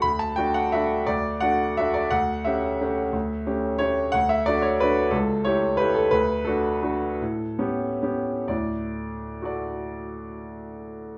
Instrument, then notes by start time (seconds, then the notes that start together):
grand piano
0.02 D2 B5
0.19 A5
0.36 A3 D4 F#4 G5
0.54 F#5
0.72 A3 D4 F#4 E5
1.07 D2 D5
1.41 A3 D4 F#4 F#5
1.77 A3 D4 F#4 E5
1.94 D5
2.11 D2 F#5
2.45 A3 C#4 G4 E5
2.81 A3 C#4 G4
3.13 D2
3.46 A3 C#4 G4
3.79 A3 C#4 G4 C#5
4.12 D2 F#5
4.29 E5
4.46 A3 D4 F#4 D5
4.62 C#5
4.80 A3 D4 F#4 B4
5.11 C#2 A4
5.45 A3 E4 G4 C#5
5.77 A3 E4 G4 B4
5.94 A4
6.11 D2 B4
6.45 A3 D4 F#4 A4
6.82 A3 D4 F#4
7.22 A2
7.59 B3 C#4 G4
8.03 B3 C#4 G4
8.48 D2 A2 D5
9.42 F#4 A4 D5